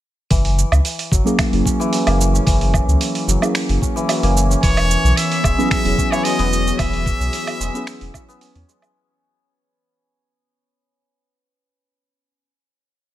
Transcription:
0.30 sub bass F#1, santur E3, kick, open hi-hat, cabasa
0.45 open hi-hat
0.59 cabasa
0.72 sub bass C#2, cabasa, low woodblock
0.85 open hi-hat, cabasa
0.99 open hi-hat
1.12 sub bass F#1, santur F#3, kick, cabasa
1.24 synth keys F#3 A#3 C#4 E4 G#4, santur A#3, cabasa
1.39 finger snap, kick, open hi-hat, cabasa, low woodblock
1.50 sub bass F#1, synth keys F#3 A#3 C#4 E4 G#4, open hi-hat
1.66 santur C#4, kick, cabasa
1.80 santur E3, cabasa
1.92 santur F#3, open hi-hat, cabasa
2.07 sub bass F#1, santur A#3, open hi-hat, low woodblock
2.21 cabasa
2.34 santur C#4, cabasa
2.47 sub bass F#1, santur E3, kick, open hi-hat, cabasa
2.61 open hi-hat
2.74 kick, cabasa, low woodblock
2.88 sub bass C#2, cabasa
3.01 open hi-hat, cabasa
3.15 open hi-hat
3.28 sub bass F#1, santur F#3, cabasa
3.40 synth keys F#3 A#3 C#4 E4 G#4, santur A#3, cabasa, low woodblock
3.55 finger snap, open hi-hat, cabasa
3.69 sub bass F#1, open hi-hat
3.82 santur C#4, kick, cabasa
3.96 santur E3, cabasa
4.09 santur F#3, open hi-hat, cabasa, low woodblock
4.23 sub bass F#1, santur A#3, open hi-hat
4.37 cabasa
4.50 santur C#4, cabasa
4.63 sub bass E1, santur E3, analog synth pad E3, muted trumpet C#5, kick, open hi-hat, cabasa
4.74 analog synth pad B3, open hi-hat, low woodblock
4.91 analog synth pad C#5, cabasa
5.04 sub bass B1, cabasa
5.17 muted trumpet E5, open hi-hat, cabasa
5.32 open hi-hat
5.44 sub bass E1, santur G#3, analog synth pad F#4, kick, cabasa, low woodblock
5.57 synth keys F#3 B3 C#4 E4 G#4, santur B3, cabasa
5.71 muted trumpet E5, finger snap, kick, open hi-hat, cabasa
5.83 sub bass E1, synth keys F#3 B3 C#4 E4 G#4, open hi-hat
5.88 analog synth pad G#4
5.98 santur C#4, kick, cabasa
6.12 santur E3, muted trumpet C#5, cabasa, low woodblock
6.24 santur G#3, muted trumpet D#5, open hi-hat, cabasa
6.39 sub bass E1, santur B3, open hi-hat
6.53 cabasa
6.67 santur C#4, cabasa
6.78 sub bass E1, santur E3, muted trumpet E5, kick, open hi-hat, cabasa, low woodblock
6.93 open hi-hat
7.06 kick, cabasa
7.20 sub bass B1, cabasa
7.33 open hi-hat, cabasa
7.47 open hi-hat, low woodblock
7.60 sub bass E1, santur G#3, cabasa
7.72 synth keys F#3 B3 C#4 E4, santur B3, cabasa
7.76 synth keys G#4
7.87 finger snap, open hi-hat, cabasa
8.01 sub bass E1, open hi-hat
8.14 santur C#4, kick, cabasa, low woodblock
8.29 santur B3, cabasa
8.41 santur C#4, open hi-hat, cabasa
8.55 sub bass E2, santur C#4, open hi-hat
8.68 santur G#3, cabasa
8.82 santur G#3, cabasa, low woodblock

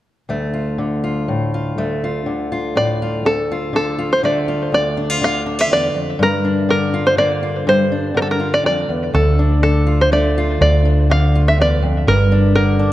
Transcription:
0.29 steel-string acoustic guitar D2 A3
0.54 steel-string acoustic guitar F4
0.78 steel-string acoustic guitar D3
1.04 steel-string acoustic guitar F4
1.28 steel-string acoustic guitar A2
1.54 steel-string acoustic guitar F4
1.78 steel-string acoustic guitar D2 A3
2.04 steel-string acoustic guitar F4
2.26 steel-string acoustic guitar D3
2.52 steel-string acoustic guitar F4
2.75 steel-string acoustic guitar A2, five-string banjo D5
3.02 steel-string acoustic guitar F4
3.25 steel-string acoustic guitar D2, five-string banjo A4
3.52 steel-string acoustic guitar F4
3.73 steel-string acoustic guitar D3, five-string banjo A4
3.99 steel-string acoustic guitar F4
4.13 five-string banjo C5
4.23 steel-string acoustic guitar D3 A3, five-string banjo D5
4.48 steel-string acoustic guitar F4
4.72 steel-string acoustic guitar D2, five-string banjo D5
4.97 steel-string acoustic guitar D4
5.10 steel-string acoustic guitar F4
5.21 steel-string acoustic guitar D3, five-string banjo F5
5.46 steel-string acoustic guitar D4
5.59 steel-string acoustic guitar F4, five-string banjo E5
5.70 steel-string acoustic guitar E2, five-string banjo D5
5.94 steel-string acoustic guitar F2
6.19 steel-string acoustic guitar G2, five-string banjo A#4
6.45 steel-string acoustic guitar D4
6.69 steel-string acoustic guitar D3, five-string banjo A#4
6.94 steel-string acoustic guitar F4
7.07 five-string banjo C5
7.17 steel-string acoustic guitar D3 A#3, five-string banjo D5
7.43 steel-string acoustic guitar F4
7.67 steel-string acoustic guitar G2, five-string banjo C5
7.92 steel-string acoustic guitar D4
8.14 steel-string acoustic guitar D3, five-string banjo A#4
8.22 five-string banjo A4
8.31 five-string banjo A#4
8.40 steel-string acoustic guitar F4
8.54 five-string banjo D5
8.64 steel-string acoustic guitar F2, five-string banjo D5
8.89 steel-string acoustic guitar E2
9.13 steel-string acoustic guitar D2, fingered electric bass D2, five-string banjo A4
9.39 steel-string acoustic guitar D4
9.63 steel-string acoustic guitar D3, five-string banjo A4
9.87 steel-string acoustic guitar F4
10.01 five-string banjo C5
10.12 steel-string acoustic guitar D3 A3, five-string banjo D5
10.38 steel-string acoustic guitar F4
10.61 fingered electric bass D2, steel-string acoustic guitar D2, five-string banjo D5
10.85 steel-string acoustic guitar D4
11.10 steel-string acoustic guitar D3, five-string banjo F5
11.35 steel-string acoustic guitar F4
11.48 five-string banjo E5
11.58 steel-string acoustic guitar E2, five-string banjo D5
11.82 steel-string acoustic guitar F2
12.07 fingered electric bass G1, steel-string acoustic guitar G2, five-string banjo A#4
12.32 steel-string acoustic guitar D4
12.55 steel-string acoustic guitar D3, five-string banjo A#4
12.79 steel-string acoustic guitar D4

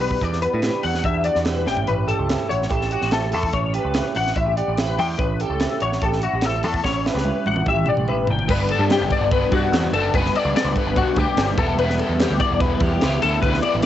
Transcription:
Already playing: clean electric guitar E3 G3
0.00 picked electric bass B1, clean electric guitar E2 B4, open hi-hat
0.11 kick
0.21 picked electric bass E2, clean electric guitar E3 D5, kick, closed hi-hat
0.33 snare
0.42 clean electric guitar B3 B4, closed hi-hat
0.53 picked electric bass A2, clean electric guitar D4
0.62 clean electric guitar G3, snare, closed hi-hat
0.83 picked electric bass E2, clean electric guitar F#4 F#5, open hi-hat
0.94 snare
1.04 picked electric bass E2, clean electric guitar D4 E5, kick, closed hi-hat
1.24 clean electric guitar F#4 D5, closed hi-hat
1.35 picked electric bass E2, snare
1.45 clean electric guitar G3 B4, snare, closed hi-hat
1.65 picked electric bass A1, clean electric guitar A2 C#4 E4 G4 G5, snare
1.77 floor tom
1.87 picked electric bass A1, clean electric guitar C#4 B4, closed hi-hat
2.07 clean electric guitar G4 A4, closed hi-hat
2.19 picked electric bass C#2
2.28 clean electric guitar E4, snare, closed hi-hat
2.49 picked electric bass A1, clean electric guitar F#4 C#5, closed hi-hat
2.62 snare
2.70 picked electric bass A1, clean electric guitar G4 A4, kick, closed hi-hat
2.81 snare
2.91 clean electric guitar F#4 G4, closed hi-hat
3.02 picked electric bass A1, snare
3.11 clean electric guitar E4 A4, snare, closed hi-hat
3.31 picked electric bass E2, clean electric guitar A2 A4, open hi-hat
3.43 kick
3.53 picked electric bass A1, clean electric guitar C#4 C#5, kick, closed hi-hat
3.73 clean electric guitar G4 B4, closed hi-hat
3.85 picked electric bass C#2
3.94 clean electric guitar E4, snare, closed hi-hat
4.15 picked electric bass A1, clean electric guitar F#4 F#5, open hi-hat
4.27 snare
4.36 picked electric bass A1, clean electric guitar E4 E5, kick, closed hi-hat
4.46 clean electric guitar G4
4.57 clean electric guitar G4 D5, closed hi-hat
4.68 picked electric bass A1
4.77 clean electric guitar E4 B4, snare, closed hi-hat
4.99 picked electric bass E2, clean electric guitar A2 G5, open hi-hat
5.19 picked electric bass A1, clean electric guitar C#4 B4, kick, closed hi-hat
5.40 clean electric guitar G4 A4, closed hi-hat
5.50 picked electric bass C#2
5.60 clean electric guitar E4, snare, closed hi-hat
5.80 picked electric bass A1, clean electric guitar C#5, closed hi-hat
5.85 clean electric guitar F#4
5.92 snare
6.02 picked electric bass A1, clean electric guitar G4 A4, kick, closed hi-hat
6.12 snare
6.22 clean electric guitar E4 F#4, closed hi-hat
6.33 picked electric bass A1, clean electric guitar G4
6.41 clean electric guitar A4, snare, closed hi-hat
6.46 clean electric guitar E4
6.63 picked electric bass E2, clean electric guitar A2 A4, open hi-hat
6.74 kick
6.84 picked electric bass A1, clean electric guitar C#4 C#5, kick, snare
7.06 clean electric guitar E4 B4, snare
7.14 picked electric bass C#2, clean electric guitar G4, snare
7.25 clean electric guitar E4, high tom
7.46 picked electric bass A1, clean electric guitar F#4 F#5, high tom
7.56 mid tom
7.66 picked electric bass A1, clean electric guitar G4 E5, kick, mid tom
7.86 clean electric guitar G4 D5, mid tom
7.97 picked electric bass A1, mid tom
8.08 picked electric bass A1, clean electric guitar E4 B4, mid tom
8.27 picked electric bass G1, clean electric guitar A2 G5, floor tom
8.39 floor tom
8.48 picked electric bass G1, overdriven electric guitar G2 D3 G3 B3 D4, clean electric guitar B4, kick, crash
8.69 clean electric guitar A4, ride
8.79 picked electric bass G2
8.90 clean electric guitar G4, snare, ride
9.01 picked electric bass F#1
9.10 clean electric guitar D5, kick, ride
9.21 picked electric bass G1
9.31 clean electric guitar B4, kick, ride
9.52 picked electric bass G2, clean electric guitar F#4, kick, ride
9.72 picked electric bass E2, snare, ride
9.92 picked electric bass F#1, overdriven electric guitar G2 D3 G3 B3 D4, clean electric guitar A4, ride
10.14 picked electric bass F#1, overdriven electric guitar G2 D3 G3 B3 D4, clean electric guitar B4, kick, ride
10.26 snare
10.36 clean electric guitar D5, ride
10.45 picked electric bass C#2
10.56 clean electric guitar D5, snare, ride
10.65 picked electric bass C#2
10.76 clean electric guitar B4, kick, ride
10.87 picked electric bass G1
10.96 clean electric guitar F#4, kick, ride
11.16 picked electric bass D2, clean electric guitar G4, kick, ride
11.37 picked electric bass G1, snare, ride
11.57 picked electric bass E1, overdriven electric guitar E3 G3 B3 E4, clean electric guitar A4, kick, ride
11.77 picked electric bass E1, clean electric guitar B4, ride
11.90 snare
11.99 clean electric guitar A4, ride
12.09 picked electric bass E2
12.19 clean electric guitar G4, snare, ride
12.30 picked electric bass D2
12.40 clean electric guitar D5, kick, ride
12.51 picked electric bass E1
12.60 clean electric guitar B4, kick, ride
12.80 picked electric bass E2, clean electric guitar G4, kick, ride
13.01 picked electric bass C#2, overdriven electric guitar E3 G3 B3 E4, snare, ride
13.21 picked electric bass D2, overdriven electric guitar E3 G3 B3 E4, clean electric guitar A4, ride
13.42 picked electric bass D2, clean electric guitar B4, kick, ride
13.54 snare
13.62 clean electric guitar D5, ride
13.75 picked electric bass A1
13.82 ride

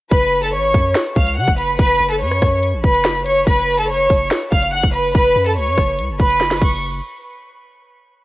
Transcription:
0.11 808-style bass F#1, violin section B4 B5, kick, closed hi-hat
0.43 violin section A4 A5, closed hi-hat
0.53 808-style bass G#1, violin section C#5 C#6
0.74 808-style bass F#2, kick, closed hi-hat
0.95 snare, closed hi-hat
1.16 808-style bass C#2, violin section F5 F6, kick
1.27 closed hi-hat
1.37 808-style bass C#3, violin section F#5 F#6
1.48 808-style bass F#1, kick
1.58 violin section B4 B5, closed hi-hat
1.79 808-style bass F#1, violin section B4 B5, kick, closed hi-hat
2.00 808-style bass F#1
2.11 violin section A4 A5, closed hi-hat
2.21 808-style bass F#2, violin section C#5 C#6
2.31 cross-stick
2.42 808-style bass F#2, kick, cross-stick, closed hi-hat
2.63 closed hi-hat
2.74 808-style bass A1
2.84 808-style bass F#1, violin section B4 B5, kick
2.94 closed hi-hat
3.05 snare
3.26 violin section C#5 C#6, closed hi-hat
3.47 808-style bass F#1, violin section B4 B5, kick, closed hi-hat
3.78 violin section A4 A5, closed hi-hat
3.89 violin section C#5 C#6
4.10 808-style bass F#1, kick, closed hi-hat
4.31 snare, closed hi-hat
4.52 808-style bass F#1, violin section F5 F6, kick
4.62 closed hi-hat
4.73 violin section F#5 F#6
4.83 808-style bass F#1, kick
4.94 violin section B4 B5, closed hi-hat
5.15 808-style bass F#1, violin section B4 B5, kick, closed hi-hat
5.36 808-style bass F#2
5.46 violin section A4 A5, closed hi-hat
5.57 808-style bass C#2, violin section C#5 C#6
5.67 808-style bass F#2
5.78 808-style bass F#1, kick, cross-stick, closed hi-hat
5.99 808-style bass C#2, closed hi-hat
6.09 808-style bass F#1
6.20 808-style bass F#1, violin section B4 B5, kick
6.30 closed hi-hat
6.41 snare
6.51 snare
6.62 808-style bass F#1, violin section C#6, kick, crash

